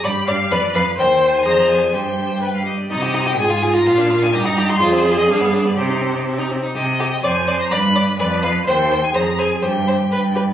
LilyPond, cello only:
\new Staff \with { instrumentName = "Cello" } { \clef bass \time 2/4 \key c \minor \tempo 4 = 125 g,8 g,8 f,8 f,8 | ees,4 f,4 | g,4. r8 | c4 aes,4 |
bes,4 g,4 | f,4 g,4 | c4. r8 | c4 f,4 |
g,4 f,4 | ees,4 f,4 | g,4 g,4 | }